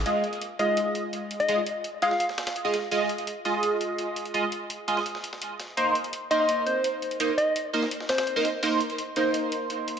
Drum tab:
HH |x-xxx-x-x-x-x-xx|x-x-x-x-x-xxx-x-|x-xxx-x-x-x-x-xx|x-x-x-x-x-x-x-x-|
SD |----------------|-------o-ooo--o-|----------------|-------o-o-o--o-|

HH |x-xxx-x-x-x-x-xx|x-x-x-x-x-xxx-x-|x-xxx-x-x-x-x-x-|
SD |----------------|-------o-ooo--o-|----------------|